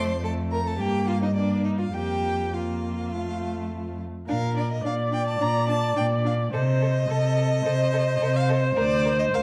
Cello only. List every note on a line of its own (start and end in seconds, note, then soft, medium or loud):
0.00 0.80 F2 medium
0.79 1.93 G2 medium
1.94 4.04 F2 medium
4.28 4.78 A#2 medium
4.85 5.34 A#2 medium
5.40 5.90 A#2 medium
5.96 6.46 A#2 medium
6.53 7.03 C3 medium
7.09 7.59 C3 medium
7.65 8.14 C3 medium
8.21 8.70 C3 medium
8.77 9.26 D2 medium
9.33 9.43 D2 medium